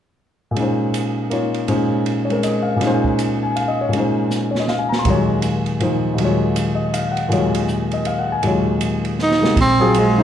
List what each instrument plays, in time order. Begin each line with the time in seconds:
0.51 grand piano A#2 G#3
0.56 grand piano C#4 D#4, ride
0.62 grand piano C5
0.94 hi-hat pedal, ride
1.30 grand piano A#3 D#4 F4 C#5, ride
1.54 ride
1.68 grand piano A#2 G#3 C#4 D#4 C5, ride
2.06 ride
2.25 grand piano C#5
2.29 grand piano G#3 C4 A#4, ride
2.43 grand piano D#5, hi-hat pedal, ride
2.63 grand piano F5
2.76 grand piano A#2 G#3
2.81 grand piano C#4, snare, ride
2.85 grand piano D#4 C5
3.04 kick
3.19 hi-hat pedal, ride
3.43 grand piano G#5
3.56 grand piano F5, ride
3.68 grand piano D#5
3.81 grand piano C#5
3.89 grand piano A#2 G#3
3.93 grand piano C#4 D#4, ride
4.00 grand piano C5
4.30 snare, hi-hat pedal
4.51 grand piano C#5
4.55 snare
4.60 grand piano D#5
4.68 grand piano F5, snare
4.79 grand piano G#5
4.89 grand piano A#5, snare
4.99 grand piano C6
5.05 grand piano D#2 A#2 F#3 G#3, kick, ride
5.09 grand piano F4 C#5
5.42 hi-hat pedal, ride
5.66 ride
5.80 grand piano A#2 F3 D#4 C5, ride
6.14 grand piano D#2 A#2
6.18 grand piano F#3 G#3, ride
6.23 grand piano F4 C#5
6.56 hi-hat pedal, ride
6.75 grand piano D#5
6.94 grand piano F5, hi-hat pedal, ride
7.12 grand piano F#5
7.17 ride
7.29 grand piano D#2 A#2 F#3 G#3, ride
7.33 grand piano F4 C#5
7.55 ride
7.68 hi-hat pedal
7.91 grand piano D#5, ride
8.05 grand piano F5, ride
8.19 grand piano F#5
8.32 grand piano G#5
8.42 grand piano D#2 A#2 F#3 G#3, ride
8.46 grand piano F4 C#5
8.81 hi-hat pedal, ride
9.05 ride
9.19 snare
9.23 tenor saxophone D#4
9.31 snare
9.41 grand piano C3 G#3 A#3 F#4 D#5, snare
9.56 upright bass A#1, kick, ride
9.61 tenor saxophone C4
9.80 grand piano F#3 C4 F4 G#4
9.94 tenor saxophone G#3, hi-hat pedal, ride
10.18 grand piano C#3 F#3 C4 D#4